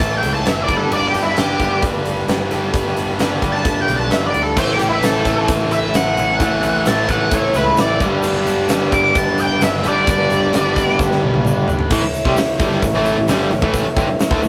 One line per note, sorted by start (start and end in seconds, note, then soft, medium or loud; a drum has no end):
0.00 0.21 A1 medium
0.00 0.24 A2 medium
0.00 0.69 E3 medium
0.00 0.24 A3 medium
0.00 0.66 A3 medium
0.00 0.71 A3 medium
0.00 0.22 C#4 medium
0.00 0.66 E4 medium
0.00 0.21 E4 medium
0.00 0.21 A4 medium
0.00 0.66 C#5 medium
0.00 0.16 A5 medium
0.00 kick loud
0.00 closed hi-hat medium
0.17 0.47 A4 loud
0.17 0.33 G5 medium
0.22 0.44 C#2 medium
0.22 0.69 A2 medium
0.22 0.43 A3 medium
0.22 0.44 C#4 medium
0.22 0.45 E4 medium
0.22 closed hi-hat medium
0.33 0.47 A5 medium
0.44 0.67 F#1 medium
0.44 0.70 A3 medium
0.44 0.67 C#4 medium
0.44 0.67 E4 medium
0.44 0.66 A4 medium
0.44 snare loud
0.44 closed hi-hat medium
0.49 0.63 E5 medium
0.63 0.93 B4 medium
0.63 0.77 D5 medium
0.68 0.89 G1 medium
0.68 1.36 G2 medium
0.68 1.36 D3 medium
0.68 0.89 G3 medium
0.68 4.55 A3 medium
0.68 0.92 B3 medium
0.68 0.91 D4 medium
0.68 4.55 G4 medium
0.68 4.55 B4 medium
0.68 kick medium
0.68 closed hi-hat medium
0.78 0.92 A4 medium
0.90 1.12 G1 medium
0.90 1.36 G3 loud
0.90 1.14 B3 loud
0.90 1.15 D4 loud
0.90 1.12 B4 loud
0.90 1.07 D5 loud
0.90 crash medium
1.08 1.22 G4 medium
1.12 1.35 G1 medium
1.12 1.38 B3 medium
1.12 1.37 D4 medium
1.12 1.39 B4 medium
1.12 closed hi-hat medium
1.23 1.39 E4 medium
1.36 1.58 G1 medium
1.36 2.49 G2 medium
1.36 2.51 D3 medium
1.36 1.62 G3 medium
1.36 1.60 B3 medium
1.36 1.61 D4 medium
1.36 1.83 G4 medium
1.36 1.59 B4 medium
1.36 snare loud
1.36 closed hi-hat medium
1.59 1.81 G1 medium
1.59 1.80 G3 medium
1.59 1.82 B3 medium
1.59 1.81 D4 medium
1.59 1.83 B4 medium
1.59 kick medium
1.59 closed hi-hat medium
1.81 2.24 G1 medium
1.81 2.06 G3 medium
1.81 2.04 B3 medium
1.81 2.05 D4 medium
1.81 2.02 B4 medium
1.81 kick loud
1.81 closed hi-hat medium
2.03 2.25 G3 medium
2.03 2.28 B3 medium
2.03 2.27 D4 medium
2.03 2.29 B4 loud
2.03 closed hi-hat medium
2.27 2.49 G1 medium
2.27 2.71 G3 medium
2.27 2.50 B3 medium
2.27 2.51 D4 medium
2.27 2.48 B4 medium
2.27 snare loud
2.27 closed hi-hat medium
2.50 2.73 G1 medium
2.50 3.18 G2 medium
2.50 3.19 D3 loud
2.50 3.20 G3 medium
2.50 2.73 B3 medium
2.50 2.72 D4 medium
2.50 2.74 B4 medium
2.50 closed hi-hat medium
2.72 2.95 G1 medium
2.72 3.18 G3 medium
2.72 2.96 B3 medium
2.72 2.97 D4 loud
2.72 2.94 B4 loud
2.72 kick loud
2.72 closed hi-hat medium
2.95 3.18 G1 medium
2.95 3.19 B3 medium
2.95 3.18 D4 medium
2.95 3.21 B4 medium
2.95 closed hi-hat medium
3.19 3.41 G1 medium
3.19 4.33 G2 medium
3.19 4.34 D3 medium
3.19 3.44 G3 medium
3.19 3.41 B3 medium
3.19 3.42 D4 medium
3.19 3.40 B4 medium
3.19 snare loud
3.19 closed hi-hat medium
3.41 3.63 G1 medium
3.41 3.63 G3 medium
3.41 3.66 B3 medium
3.41 3.65 D4 medium
3.41 3.67 B4 medium
3.41 kick medium
3.41 closed hi-hat medium
3.52 3.81 A5 medium
3.52 snare soft
3.64 3.86 G1 medium
3.64 3.90 G3 medium
3.64 3.88 B3 medium
3.64 3.89 D4 medium
3.64 3.86 B4 medium
3.64 kick loud
3.64 closed hi-hat medium
3.81 3.96 G5 medium
3.87 4.09 B1 medium
3.87 4.12 B3 medium
3.87 4.11 D4 medium
3.87 4.13 B4 medium
3.87 closed hi-hat medium
3.91 4.09 G3 medium
3.96 4.11 A5 medium
4.11 4.32 G1 medium
4.11 4.56 G3 medium
4.11 4.34 B3 medium
4.11 4.36 D4 medium
4.11 4.32 B4 medium
4.11 4.26 E5 medium
4.11 snare loud
4.11 closed hi-hat medium
4.26 4.42 D5 medium
4.33 4.56 D2 medium
4.33 4.56 B3 medium
4.33 4.57 D4 medium
4.33 4.56 B4 medium
4.33 closed hi-hat medium
4.42 4.58 A4 medium
4.56 4.78 A1 medium
4.56 5.29 A2 medium
4.56 5.26 E3 medium
4.56 5.02 A3 medium
4.56 7.98 A3 medium
4.56 4.83 C#4 loud
4.56 7.98 E4 medium
4.56 4.82 E4 loud
4.56 4.80 A4 loud
4.56 4.73 C5 medium
4.56 7.98 C#5 medium
4.56 kick loud
4.56 crash medium
4.56 shaker medium
4.73 4.89 G4 medium
4.79 5.01 A1 medium
4.79 5.05 E4 medium
4.79 5.06 A4 medium
4.79 closed hi-hat medium
4.79 shaker medium
4.83 5.04 C#4 medium
4.89 5.03 E4 medium
5.03 5.24 A1 medium
5.03 5.28 A3 medium
5.03 5.27 C#4 medium
5.03 5.25 E4 medium
5.03 5.48 A4 medium
5.03 5.25 A4 medium
5.03 snare loud
5.03 closed hi-hat medium
5.03 shaker medium
5.25 5.46 A1 medium
5.25 6.39 E3 medium
5.25 5.48 A3 medium
5.25 5.49 C#4 medium
5.25 5.50 E4 medium
5.25 5.52 A4 medium
5.25 kick medium
5.25 closed hi-hat medium
5.25 shaker medium
5.29 5.73 A2 medium
5.48 5.90 A1 loud
5.48 5.73 A3 medium
5.48 5.72 C#4 medium
5.48 5.71 E4 medium
5.48 kick loud
5.48 closed hi-hat loud
5.48 shaker medium
5.52 5.71 A4 medium
5.71 6.19 A2 medium
5.71 5.94 A3 medium
5.71 5.94 C#4 medium
5.71 5.96 E4 loud
5.71 5.97 A4 loud
5.71 5.94 E5 medium
5.71 closed hi-hat medium
5.71 shaker medium
5.94 6.15 A1 medium
5.94 6.40 A3 medium
5.94 6.20 C#4 medium
5.94 6.18 E4 medium
5.94 6.17 A4 medium
5.94 6.84 F#5 medium
5.94 snare loud
5.94 closed hi-hat medium
5.94 shaker medium
6.17 6.39 A1 medium
6.17 6.41 C#4 medium
6.17 6.41 E4 medium
6.17 6.43 A4 medium
6.17 closed hi-hat medium
6.17 shaker medium
6.40 6.61 A1 medium
6.40 6.86 A2 loud
6.40 7.09 E3 medium
6.40 6.86 A3 medium
6.40 6.64 C#4 loud
6.40 6.63 E4 loud
6.40 6.62 A4 loud
6.40 kick loud
6.40 closed hi-hat loud
6.40 shaker medium
6.62 6.84 A1 medium
6.62 6.86 C#4 medium
6.62 6.87 E4 medium
6.62 6.89 A4 medium
6.62 closed hi-hat medium
6.62 shaker medium
6.85 7.07 A1 medium
6.85 7.11 A3 medium
6.85 7.10 C#4 medium
6.85 7.08 E4 medium
6.85 7.09 A5 medium
6.85 snare loud
6.85 closed hi-hat medium
6.85 shaker loud
6.90 7.08 A4 medium
7.08 7.30 A1 medium
7.08 7.56 A2 medium
7.08 8.00 E3 medium
7.08 7.30 A3 medium
7.08 7.31 C#4 medium
7.08 7.32 E4 medium
7.08 7.34 A4 medium
7.08 7.32 F#5 loud
7.08 kick medium
7.08 closed hi-hat medium
7.08 shaker medium
7.30 7.52 A1 medium
7.30 7.56 A3 medium
7.30 7.55 C#4 medium
7.30 7.54 E4 medium
7.30 7.53 A4 medium
7.30 7.55 C#5 medium
7.30 kick loud
7.30 closed hi-hat medium
7.30 shaker medium
7.54 7.76 C#2 medium
7.54 8.01 A2 medium
7.54 7.76 A3 medium
7.54 7.77 C#4 medium
7.54 7.78 E4 medium
7.54 7.80 A4 loud
7.54 7.78 B4 medium
7.54 closed hi-hat medium
7.54 shaker medium
7.77 7.99 A1 medium
7.77 8.03 A3 medium
7.77 8.00 C#4 medium
7.77 8.01 E4 medium
7.77 8.00 A4 medium
7.77 8.01 D5 loud
7.77 snare loud
7.77 closed hi-hat loud
7.77 shaker medium
8.00 8.21 G1 medium
8.00 8.70 G2 medium
8.00 8.69 D3 medium
8.00 8.22 G3 medium
8.00 11.87 A3 medium
8.00 8.25 B3 medium
8.00 8.24 D4 medium
8.00 11.87 G4 medium
8.00 8.26 B4 medium
8.00 11.87 B4 medium
8.00 kick loud
8.00 closed hi-hat medium
8.00 shaker medium
8.23 8.44 G1 medium
8.23 8.68 G3 loud
8.23 8.48 B3 loud
8.23 8.49 D4 medium
8.23 crash medium
8.23 shaker loud
8.27 8.46 B4 loud
8.46 8.67 G1 medium
8.46 8.71 B3 medium
8.46 8.70 D4 medium
8.46 8.72 B4 medium
8.46 closed hi-hat medium
8.46 shaker medium
8.68 8.90 G1 medium
8.68 9.83 G2 medium
8.68 9.85 D3 medium
8.68 8.95 G3 medium
8.68 8.93 B3 medium
8.68 8.94 D4 medium
8.68 snare loud
8.68 closed hi-hat loud
8.68 shaker loud
8.73 9.85 G3 medium
8.73 8.92 B4 medium
8.92 9.13 G1 medium
8.92 9.14 G3 medium
8.92 9.17 B3 medium
8.92 9.16 D4 medium
8.92 9.18 B4 medium
8.92 9.16 D6 loud
8.92 kick medium
8.92 closed hi-hat medium
8.92 shaker medium
9.05 snare soft
9.15 9.57 G1 medium
9.15 9.41 G3 medium
9.15 9.39 B3 medium
9.15 9.41 D4 medium
9.15 9.39 A5 loud
9.15 kick loud
9.15 closed hi-hat medium
9.15 shaker medium
9.19 9.37 B4 medium
9.38 9.64 B3 loud
9.38 9.65 B4 loud
9.38 9.62 G5 medium
9.38 closed hi-hat medium
9.38 shaker medium
9.42 9.61 G3 medium
9.42 9.63 D4 medium
9.61 9.83 G1 medium
9.61 10.07 G3 medium
9.61 9.87 D4 medium
9.61 9.85 E5 medium
9.61 snare loud
9.61 closed hi-hat loud
9.61 shaker medium
9.65 9.86 B3 medium
9.65 9.84 B4 medium
9.84 10.06 G1 medium
9.84 10.52 G2 medium
9.84 10.53 D3 loud
9.84 10.53 G3 medium
9.84 10.10 B3 medium
9.84 10.11 B4 medium
9.84 closed hi-hat medium
9.84 shaker medium
9.88 10.09 D4 medium
9.88 10.09 D5 medium
10.07 10.28 G1 loud
10.07 10.52 G3 loud
10.07 10.33 D4 loud
10.07 10.98 D5 loud
10.07 kick loud
10.07 closed hi-hat loud
10.07 shaker medium
10.11 10.31 B3 loud
10.11 10.30 B4 loud
10.30 10.52 G1 medium
10.30 10.55 B3 medium
10.30 10.54 D4 medium
10.30 10.56 B4 medium
10.30 closed hi-hat medium
10.30 shaker medium
10.53 10.74 G1 medium
10.53 11.67 G2 medium
10.53 11.68 D3 medium
10.53 10.79 G3 medium
10.53 10.77 B3 medium
10.53 10.78 D4 medium
10.53 snare loud
10.53 closed hi-hat medium
10.53 shaker loud
10.57 10.75 B4 medium
10.76 10.97 G1 medium
10.76 10.98 G3 medium
10.76 11.00 B3 medium
10.76 10.99 D4 medium
10.76 11.02 B4 medium
10.76 kick medium
10.76 closed hi-hat medium
10.76 shaker medium
10.89 snare soft
10.99 11.20 G1 loud
10.99 11.24 G3 medium
10.99 11.22 B3 medium
10.99 11.23 D4 medium
10.99 11.20 B4 medium
10.99 kick loud
10.99 snare medium
10.99 shaker loud
11.12 snare medium
11.22 11.44 B1 medium
11.22 11.42 G3 medium
11.22 11.45 B3 loud
11.22 11.44 D4 medium
11.22 11.46 B4 loud
11.34 high tom medium
11.43 11.66 G1 medium
11.43 11.89 G3 medium
11.43 11.68 B3 medium
11.43 11.70 D4 medium
11.43 11.66 B4 medium
11.43 mid tom medium
11.43 shaker medium
11.67 11.89 G#1 medium
11.67 11.90 B3 medium
11.67 11.91 D4 medium
11.67 11.89 B4 medium
11.67 floor tom medium
11.67 shaker medium
11.79 floor tom medium
11.90 12.02 A1 medium
11.90 12.02 A2 loud
11.90 12.03 E3 loud
11.90 14.48 A3 medium
11.90 14.48 E4 medium
11.90 14.48 C#5 medium
11.90 kick loud
11.90 crash loud
11.90 shaker medium
12.04 muted overdriven electric guitar stroke medium
12.04 muted picked electric bass stroke soft
12.04 muted distorted electric guitar stroke medium
12.14 open hi-hat medium
12.14 shaker medium
12.25 12.36 C2 medium
12.25 12.37 C3 medium
12.25 12.37 G3 loud
12.25 kick loud
12.37 muted overdriven electric guitar stroke medium
12.37 muted picked electric bass stroke soft
12.37 muted distorted electric guitar stroke medium
12.37 snare loud
12.37 open hi-hat medium
12.37 shaker medium
12.60 12.81 G1 loud
12.60 12.82 G2 medium
12.60 12.82 D3 loud
12.60 12.82 G3 loud
12.60 kick loud
12.60 open hi-hat medium
12.60 shaker medium
12.72 snare soft
12.82 12.93 A1 medium
12.82 12.92 A2 medium
12.82 12.93 E3 medium
12.82 kick medium
12.82 open hi-hat medium
12.82 shaker medium
12.94 13.16 A1 loud
12.94 13.16 A2 medium
12.94 13.16 E3 loud
12.94 13.17 A3 loud
13.05 open hi-hat medium
13.05 shaker medium
13.17 13.28 A1 medium
13.17 13.27 A2 medium
13.17 13.28 E3 medium
13.27 13.50 G1 medium
13.27 13.50 G2 medium
13.27 13.50 D3 medium
13.27 13.50 G3 loud
13.27 snare loud
13.27 open hi-hat medium
13.27 shaker medium
13.50 13.62 A1 medium
13.50 13.61 A2 medium
13.50 13.62 E3 medium
13.50 open hi-hat medium
13.62 13.84 A1 medium
13.62 13.85 A2 loud
13.62 13.86 E3 loud
13.62 13.86 A3 loud
13.62 kick loud
13.73 kick medium
13.73 open hi-hat medium
13.73 shaker loud
13.86 muted distorted electric guitar stroke medium
13.86 muted overdriven electric guitar stroke medium
13.86 muted picked electric bass stroke soft
13.96 14.08 G1 medium
13.96 14.08 G2 medium
13.96 14.08 D3 medium
13.96 kick loud
13.96 open hi-hat medium
13.96 shaker medium
14.08 muted distorted electric guitar stroke medium
14.08 muted picked electric bass stroke soft
14.08 muted overdriven electric guitar stroke medium
14.19 snare loud
14.19 open hi-hat medium
14.19 shaker loud
14.30 14.42 D2 loud
14.30 14.42 D3 loud
14.30 14.42 A3 loud
14.30 kick loud
14.42 14.48 A1 medium
14.42 14.48 A2 medium
14.42 14.48 E3 medium
14.42 open hi-hat medium
14.42 shaker medium